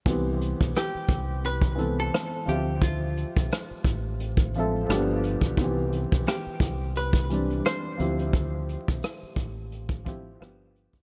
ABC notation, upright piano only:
X:1
M:4/4
L:1/16
Q:"Swing 16ths" 1/4=87
K:C
V:1 name="Upright piano"
[E,B,CG]6- [E,B,CG] z3 [E,B,CA]4 [F,CFGe]2- | [F,CFGe]4- [F,CFGe] z4 z [F,CAe]2 [F,A,B,DG]4 | [_E,=E,B,CG]6- [_E,=E,B,CG] z3 [E,G,CD]4 [F,CEG]2- | [F,CEG]4- [F,CEG] z4 z [F,CEG]2 [F,B,DG]4 |]